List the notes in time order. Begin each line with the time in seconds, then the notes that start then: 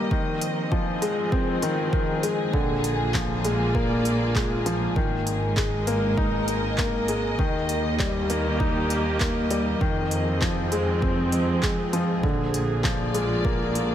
Already playing: D#3 G3 A#3 D#4 G4 D#5
0.11 D#3 F3, kick
0.16 C4
0.41 closed hi-hat
0.64 G#4
0.72 F3, kick
1.02 G#3, closed hi-hat
1.32 C4, kick
1.62 D#3, closed hi-hat
1.93 D#3, kick
2.23 G#3, closed hi-hat
2.53 A#1 D3 A#3, kick
2.80 F4, closed hi-hat
3.14 F3, kick, clap
3.34 D5
3.45 G#3, closed hi-hat
3.75 A#3, kick
4.05 closed hi-hat
4.35 G#3, kick, clap
4.66 F3, closed hi-hat
4.96 G#1 D#3 G#3, kick
5.27 A#4, closed hi-hat
5.45 D#5
5.57 G#3, kick, clap
5.87 A#3, closed hi-hat
6.17 D#4, kick
6.48 closed hi-hat
6.78 A#3, kick, clap
7.08 G#3, closed hi-hat
7.39 D#2 D#3, kick
7.51 A#3
7.63 G4
7.69 closed hi-hat
7.99 G3, kick, clap
8.30 A#3, closed hi-hat
8.60 D#4, kick
8.90 closed hi-hat
9.20 A#3, kick, clap
9.51 G3, closed hi-hat
9.81 F2 D#3 F3, kick
9.91 G#4
9.97 C4
10.11 closed hi-hat
10.42 F3, kick, clap
10.72 G#3, closed hi-hat
11.02 C4, kick
11.32 closed hi-hat
11.63 G#3, kick, clap
11.93 F3, closed hi-hat
12.23 A#1 D3 A#3, kick
12.50 F4
12.54 closed hi-hat
12.75 D5
12.84 F3, kick, clap
13.14 G#3, closed hi-hat
13.45 A#3, kick
13.75 closed hi-hat